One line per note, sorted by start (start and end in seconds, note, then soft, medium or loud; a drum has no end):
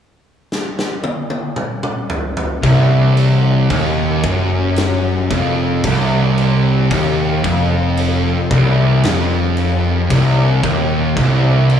0.52 snare medium
0.79 snare medium
1.04 high tom medium
1.30 high tom medium
1.56 mid tom medium
1.83 mid tom medium
2.10 floor tom loud
2.37 floor tom loud
2.62 3.66 C1 loud
2.62 3.68 C2 loud
2.62 kick loud
2.62 crash medium
3.17 crash medium
3.70 4.20 D#1 medium
3.70 4.22 D#2 loud
3.70 kick loud
3.70 crash medium
4.24 5.27 F#1 loud
4.24 5.29 F#2 loud
4.24 kick loud
4.24 crash medium
4.76 snare loud
4.76 crash medium
5.30 5.80 F1 medium
5.30 5.82 F2 loud
5.30 kick loud
5.30 crash medium
5.83 6.86 C1 loud
5.83 6.89 C2 loud
5.83 kick loud
5.83 crash medium
6.38 crash medium
6.90 7.40 D#1 loud
6.90 7.43 D#2 loud
6.90 kick loud
6.90 crash medium
7.44 8.46 F1 loud
7.44 8.49 F2 loud
7.44 kick loud
7.44 crash medium
7.97 crash medium
8.51 9.00 C1 loud
8.51 9.02 C2 loud
8.51 kick loud
8.51 crash medium
9.03 10.06 F1 loud
9.03 10.08 F2 loud
9.03 snare loud
9.03 crash medium
9.57 crash medium
10.10 10.59 C1 loud
10.10 10.62 C2 loud
10.10 kick loud
10.10 crash medium
10.63 11.12 D#1 medium
10.63 11.15 D#2 loud
10.63 kick loud
10.63 crash medium
11.16 11.80 C1 loud
11.16 11.80 C2 loud
11.16 kick loud
11.16 crash medium
11.70 crash medium